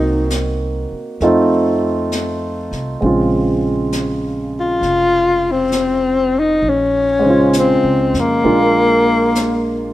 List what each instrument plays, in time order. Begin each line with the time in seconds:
Already playing: upright bass C2, upright piano A#3 C4 D#4 F#4, tenor saxophone D#4
0.30 snare, hi-hat pedal
0.92 muted upright bass stroke
1.20 upright bass F2, upright piano A3 C4 D#4 F4, brush sweep, snare
2.12 snare, hi-hat pedal
2.71 upright bass C2, snare
3.01 upright bass A#1, upright piano C#3 G#3 C4, brush sweep
3.06 upright piano F4
3.92 snare, hi-hat pedal
4.60 tenor saxophone F4
4.81 upright bass F1, brush sweep, snare
5.51 tenor saxophone C4
5.72 snare, hi-hat pedal
6.39 tenor saxophone D#4
6.62 upright bass A#1, brush sweep
6.69 tenor saxophone C#4
7.19 upright piano G#3 C5
7.26 upright piano C#3 F4
7.53 snare, hi-hat pedal
7.59 tenor saxophone C4
7.84 upright bass C#2
8.14 upright bass F2, snare
8.20 tenor saxophone A#3
8.44 upright bass A#1, upright piano G#3 A#3 D4 F4, brush sweep
9.35 snare, hi-hat pedal